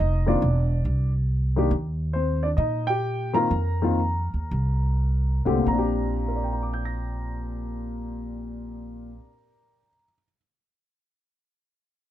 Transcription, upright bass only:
0.00 F1
0.42 E1
0.85 C2
1.71 D#2
2.58 A#2
3.51 F2
4.34 D#2
4.51 C2
5.46 C2
5.66 A#1

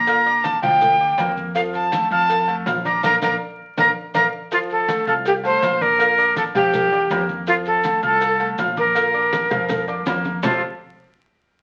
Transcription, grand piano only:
0.08 F4 F5 F6
0.26 D4 D5 D6
0.63 F3 F4 F5
1.00 D4 D5 D6
1.19 A#3 A#4 A#5
1.55 F3 F4 F5
1.93 A3 A4 A5
2.12 F4 F5 F6
2.48 A3 A4 A5
2.66 F4 F5 F6
2.85 D4 D5 D6
3.04 A#4 D5 F5
3.22 A#4 D5 F5
3.78 A#4 D5 F5
4.14 A#4 D5 F5
4.52 F3 F4 F5
4.89 A3 A4 A5
5.07 F4 F5 F6
5.44 A3 A4 A5
5.62 F4 F5 F6
5.81 D4 D5 D6
5.99 F4 F5 F6
6.18 D4 D5 D6
6.55 F3 F4 F5
6.92 D4 D5 D6
7.11 A#3 A#4 A#5
7.47 F3 F4 F5
7.84 A3 A4 A5
8.03 F4 F5 F6
8.40 A3 A4 A5
8.59 F4 F5 F6
8.77 D4 D5 D6
8.96 F4 F5 F6
9.14 D4 D5 D6
9.51 F3 F4 F5
9.88 D4 D5 D6
10.07 A#3 A#4 A#5
10.43 F3 C4 F4 G4 A4 C5

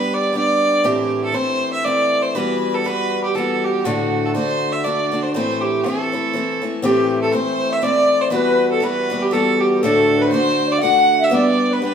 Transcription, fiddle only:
Already playing: B4
0.14 D5
0.36 D5
0.85 G4
1.24 A4
1.35 C5
1.73 E5
1.85 D5
2.22 C5
2.35 B4
2.74 A4
2.86 B4
3.24 G4
3.35 A4
3.64 G4
3.85 F#4
4.26 A4
4.35 C5
4.73 E5
4.84 D5
5.23 C5
5.33 C5
5.61 G4
5.84 A4
6.84 G4
7.22 A4
7.32 C5
7.73 E5
7.83 D5
8.21 C5
8.31 B4
8.71 A4
8.84 B4
9.22 G4
9.32 A4
9.61 G4
9.83 A4
10.22 B4
10.31 C5
10.72 D5
10.82 F#5
11.24 E5
11.35 D5
11.73 B4
11.84 B4

